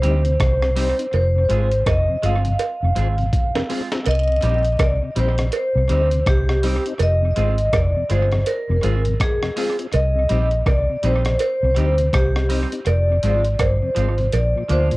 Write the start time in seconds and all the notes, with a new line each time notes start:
Already playing: C5
0.02 D2 G3 C4 D#4 G4, closed hi-hat
0.25 C3, closed hi-hat
0.40 C2 C5, kick, cross-stick, closed hi-hat
0.62 C3, cross-stick
0.76 G3 C4 D#4 G4, open hi-hat
0.98 C4 D#4, closed hi-hat
1.13 F1 C5, closed hi-hat, cowbell
1.35 F2 C3
1.49 G#1 G#3 C4 F4 G#4, closed hi-hat
1.71 closed hi-hat
1.86 F1 D#5, kick, cross-stick, closed hi-hat, cowbell
2.09 F2 C3
2.22 G1 G#3 C4 F4 G#4 F5, closed hi-hat
2.45 F2 C3, closed hi-hat
2.59 closed hi-hat, cowbell
2.82 F1 F2 C3
2.96 G#1 G#3 C4 F4 G#4, closed hi-hat
3.18 F2 C3, closed hi-hat
3.33 kick, closed hi-hat
3.56 F2 C3, snare, cowbell
3.69 G#3 C4 F4 G#4, open hi-hat
3.92 C4 F4, snare, closed hi-hat
4.06 C2 D#5, closed hi-hat, cowbell, vibraslap
4.29 C3
4.43 A#1 G3 C4 D#4 G4 D#5, closed hi-hat
4.65 closed hi-hat
4.79 C2 D5, kick, cross-stick, closed hi-hat, cowbell
5.03 C3
5.16 A#1 G3 C4 D#4 G4 C5, closed hi-hat
5.38 C3, cross-stick, closed hi-hat
5.52 closed hi-hat, cowbell
5.56 C5
5.75 C2 C3
5.89 D2 G3 C4 D#4 G4, closed hi-hat
6.11 C3, closed hi-hat
6.26 C2 G4, kick, cross-stick, closed hi-hat
6.49 C3, cross-stick
6.63 G3 C4 D#4 G4, open hi-hat
6.86 C4 D#4, closed hi-hat
6.99 F1 D#5, closed hi-hat, cowbell
7.22 F2 C3
7.36 G#1 G#3 C4 F4 G#4, closed hi-hat
7.58 closed hi-hat
7.73 F1 D5, kick, cross-stick, closed hi-hat, cowbell
7.96 F2 C3
8.09 G1 G#3 C4 F4 G#4 C5, closed hi-hat
8.31 F2 C3, cross-stick, closed hi-hat
8.46 A#4, closed hi-hat, cowbell
8.69 F1 F2 C3
8.82 G#1 G#3 C4 F4 G#4, closed hi-hat
9.05 F2 C3, closed hi-hat
9.20 G#4, kick, cross-stick, closed hi-hat
9.43 F2 C3, cross-stick
9.56 G#3 C4 F4 G#4, open hi-hat
9.79 C4 F4, closed hi-hat
9.93 C2 D#5, closed hi-hat, cowbell
10.16 C3
10.29 A#1 G3 C4 D#4 G4, closed hi-hat
10.51 closed hi-hat
10.66 C2 D5, kick, cross-stick, closed hi-hat, cowbell
10.89 C3
11.03 A#1 G3 C4 D#4 G4 C5, closed hi-hat
11.25 C3, cross-stick, closed hi-hat
11.39 C5, closed hi-hat, cowbell
11.63 C2 C3
11.76 D2 G3 C4 D#4 G4, closed hi-hat
11.98 C3, closed hi-hat
12.13 C2 G4, kick, cross-stick, closed hi-hat
12.36 C3, cross-stick
12.49 G3 C4 D#4 G4, open hi-hat
12.72 C4 D#4, closed hi-hat
12.86 F1 D5, closed hi-hat, cowbell
13.10 F2 C3
13.23 G#1 F3 G#3 C4 F4, closed hi-hat
13.45 closed hi-hat
13.59 G1 C5, kick, cross-stick, closed hi-hat, cowbell
13.82 F2 C3
13.95 G#1 F3 G#3 C4 F4, closed hi-hat
14.18 F2 C3, closed hi-hat
14.32 A#1 D5, closed hi-hat, cowbell
14.56 A#2 F3
14.68 D2 F3 A#3 D4 F4 C5, closed hi-hat
14.91 A#1 A#2 F3, closed hi-hat